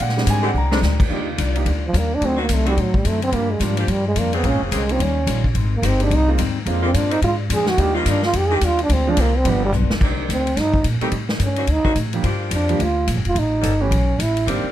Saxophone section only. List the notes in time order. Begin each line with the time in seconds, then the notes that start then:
0.42 D3 G#3 C4 G4
0.71 D3 G#3 C4 D4
1.09 D#3 G3 D4 F4
2.36 D#3 C4 D4 F#4
2.65 D#3 C4 D4 F#4
3.78 F3 A#3 D4 G4
4.33 C#3 A#3 C4 G#4
4.71 C#3 A#3 C4 G#4
5.82 D#3 G#3 C4 G4
6.81 D3 G#3 A#3 F4
7.09 D3 G#3 A#3 C4
7.94 D#3 G3 F4
8.50 D#3 G3 D4 G4
9.18 D3 G#3 C4 F4
10.03 A#3 C4 D4 D#4
11.00 D#3 A3 C4 G4
11.56 D#3 C4 D4 F#4
11.84 D#3 C4 D4 F#4
12.24 F3 A#3 D4 G4
13.61 G3 B3 C#4 A4
14.46 G3 C4 D4 A#4